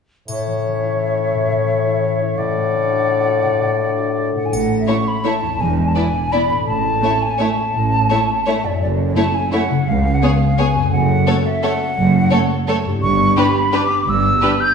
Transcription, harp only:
0.28 A2
0.46 E3
0.64 C#4
0.82 E4
1.00 A4
1.18 E4
1.35 A2
1.51 E3
1.69 C#4
1.86 E4
2.04 A4
2.22 E4
2.38 A2
2.55 A3
2.73 D4
2.92 F#4
3.10 A4
3.27 F#4
3.45 A2
3.61 A3
3.98 F#4
4.18 A4
4.35 A2 F#4
4.40 C#4
4.45 E4
4.49 A4
5.43 E2
5.47 D4
5.51 E4
5.56 B4
6.50 A2
6.54 C#4
6.59 E4
6.63 A4
8.64 F#2
8.68 C#4
8.73 E4
8.77 A4
9.70 C#3
9.74 B3
9.79 C#4
9.84 G#4
10.75 F#2
10.80 A3
10.84 C#4
10.88 A4
12.86 G2
12.90 D4
12.94 E4
12.99 G4

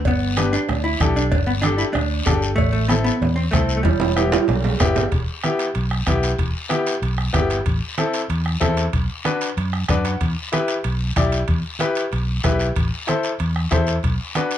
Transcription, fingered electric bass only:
0.05 G1
0.69 D2
1.01 B1
1.32 G1
1.95 D2
2.27 G1
2.58 A1
3.21 E2
3.53 C2
3.85 E1
4.49 B1
4.81 G1
5.12 E1
5.76 B1
6.08 B1
6.39 E1
7.02 B1
7.34 G1
7.66 A1
8.30 E2
8.62 E2
8.94 B1
9.57 F#2
9.89 F#2
10.21 E2
10.85 B1
11.17 B1
11.49 E2
12.13 B1
12.45 B1
12.77 A1
13.40 E2
13.72 E2
14.04 B1

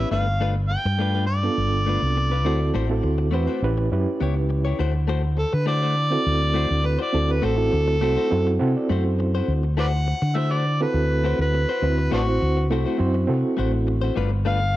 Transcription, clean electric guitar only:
Already playing: B4
0.00 C#4 E4
0.12 A3 D4 F4 B4
0.28 muted clean electric guitar stroke
0.40 A3 D4 F4 B4
0.56 muted clean electric guitar stroke
0.70 muted clean electric guitar stroke
0.86 muted clean electric guitar stroke
0.99 A3 D4 F4 B4
1.14 A3 D4 F4 B4
1.28 muted clean electric guitar stroke
1.43 muted clean electric guitar stroke
1.86 A3 D4 F4 B4
2.02 muted clean electric guitar stroke
2.17 muted clean electric guitar stroke
2.31 D4 F4 B4
2.45 A3 E4 F#4 C5
2.61 muted clean electric guitar stroke
2.74 A3 E4 F#4 C5
2.89 muted clean electric guitar stroke
3.03 muted clean electric guitar stroke
3.18 muted clean electric guitar stroke
3.31 A3 E4 F#4 C5
3.47 A3 E4 F#4 C5
3.62 muted clean electric guitar stroke
3.78 muted clean electric guitar stroke
4.21 B3 E4 G4 C#5
4.36 muted clean electric guitar stroke
4.49 muted clean electric guitar stroke
4.65 E4 G4 C#5
4.79 A3 E4 F#4 C5
4.94 muted clean electric guitar stroke
5.08 A3 E4 F#4 C5
5.23 muted clean electric guitar stroke
5.37 muted clean electric guitar stroke
5.53 muted clean electric guitar stroke
5.66 A3 E4 F#4 C5
5.82 A3 E4 F#4 C5
5.96 muted clean electric guitar stroke
6.12 muted clean electric guitar stroke
6.54 A3 E4 F#4 C5
6.70 muted clean electric guitar stroke
6.84 muted clean electric guitar stroke
6.99 E4 F#4 C5
7.29 muted clean electric guitar stroke
7.42 A3 E4 F#4 C5
7.58 muted clean electric guitar stroke
7.71 muted clean electric guitar stroke
7.88 muted clean electric guitar stroke
8.01 A3 E4 F#4 C5
8.17 A3 E4 F#4 C5
8.31 muted clean electric guitar stroke
8.47 muted clean electric guitar stroke
8.89 A3 E4 F#4 C5
9.05 muted clean electric guitar stroke
9.19 muted clean electric guitar stroke
9.35 E4 F#4 C5
9.63 muted clean electric guitar stroke
9.77 A3 E4 F#4 C5
9.93 muted clean electric guitar stroke
10.07 muted clean electric guitar stroke
10.22 muted clean electric guitar stroke
10.35 A3 E4 F#4 C5
10.51 A3 E4 F#4 C5
10.65 muted clean electric guitar stroke
10.81 muted clean electric guitar stroke
11.24 A3 E4 F#4 C5
11.40 muted clean electric guitar stroke
11.54 muted clean electric guitar stroke
11.69 E4 F#4 C5
11.98 muted clean electric guitar stroke
12.11 A3 E4 F#4 C5
12.28 muted clean electric guitar stroke
12.42 muted clean electric guitar stroke
12.57 muted clean electric guitar stroke
12.71 A3 E4 F#4 C5
12.86 A3 E4 F#4 C5
12.99 muted clean electric guitar stroke
13.14 muted clean electric guitar stroke
13.57 A3 E4 F#4 C5
13.87 muted clean electric guitar stroke
14.01 E4 F#4 C5
14.16 A3 D4 F4 B4
14.32 muted clean electric guitar stroke
14.45 A3 D4 F4 B4
14.60 muted clean electric guitar stroke

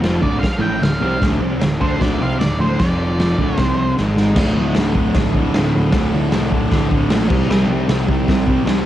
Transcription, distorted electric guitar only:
0.01 F2 F3
0.21 D2 D3
0.41 muted distorted electric guitar stroke
0.59 A2 A3
0.81 D2
1.01 C3 C4
1.19 D2 D3
1.40 C3 C4
1.61 D2
1.80 D3 D4
2.00 D2 D3
2.20 C3 C4
2.41 D2
2.60 D2 D3
2.80 F2 F3
3.39 D2 D3
3.59 C3 C4
3.98 G#2 G#3
4.35 D2 A2
4.40 D3
4.55 D3
4.60 A2
4.75 D2 A2 D3
4.95 D3
4.99 A2
5.34 D3
5.39 A2
5.54 D2 A2
5.58 D3
5.92 D2 A2
5.97 D3
6.10 D3
6.16 A2
6.30 D2 A2
6.35 D3
6.49 D3
6.54 A2
6.90 D3
6.95 A2
7.08 D2 A2
7.13 D3
7.28 G3 C4
7.32 C3
7.48 C3 G3
7.53 C4
7.69 G3 C4
7.88 C3 G3
7.92 C4
8.07 C4
8.12 G3
8.46 C4
8.51 G3
8.65 C3 G3
8.69 C4

